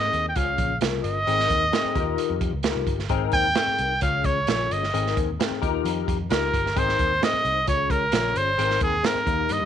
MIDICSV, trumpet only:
0, 0, Header, 1, 2, 480
1, 0, Start_track
1, 0, Key_signature, -4, "major"
1, 0, Tempo, 456969
1, 1340, Time_signature, 4, 2, 24, 8
1, 10140, End_track
2, 0, Start_track
2, 0, Title_t, "Trumpet"
2, 0, Program_c, 0, 56
2, 0, Note_on_c, 0, 75, 84
2, 281, Note_off_c, 0, 75, 0
2, 303, Note_on_c, 0, 79, 53
2, 380, Note_on_c, 0, 77, 78
2, 396, Note_off_c, 0, 79, 0
2, 815, Note_off_c, 0, 77, 0
2, 1096, Note_on_c, 0, 75, 106
2, 2498, Note_off_c, 0, 75, 0
2, 3500, Note_on_c, 0, 79, 111
2, 4181, Note_off_c, 0, 79, 0
2, 4228, Note_on_c, 0, 77, 88
2, 4469, Note_on_c, 0, 73, 88
2, 4485, Note_off_c, 0, 77, 0
2, 4963, Note_on_c, 0, 75, 82
2, 4979, Note_off_c, 0, 73, 0
2, 5435, Note_off_c, 0, 75, 0
2, 6626, Note_on_c, 0, 70, 85
2, 7121, Note_on_c, 0, 72, 102
2, 7136, Note_off_c, 0, 70, 0
2, 7604, Note_on_c, 0, 75, 89
2, 7620, Note_off_c, 0, 72, 0
2, 8068, Note_off_c, 0, 75, 0
2, 8074, Note_on_c, 0, 73, 82
2, 8307, Note_on_c, 0, 70, 89
2, 8323, Note_off_c, 0, 73, 0
2, 8793, Note_on_c, 0, 72, 92
2, 8809, Note_off_c, 0, 70, 0
2, 9267, Note_off_c, 0, 72, 0
2, 9276, Note_on_c, 0, 68, 85
2, 9514, Note_on_c, 0, 70, 74
2, 9530, Note_off_c, 0, 68, 0
2, 10005, Note_on_c, 0, 75, 81
2, 10021, Note_off_c, 0, 70, 0
2, 10140, Note_off_c, 0, 75, 0
2, 10140, End_track
0, 0, End_of_file